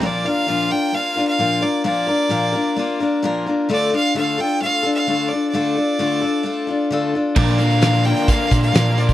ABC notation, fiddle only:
X:1
M:4/4
L:1/16
Q:1/4=131
K:Bblyd
V:1 name="Fiddle"
d2 f4 g2 f3 f3 d2 | d12 z4 | d2 f2 f2 g2 f3 f3 d2 | d12 z4 |
d2 f4 g2 f3 f3 d2 |]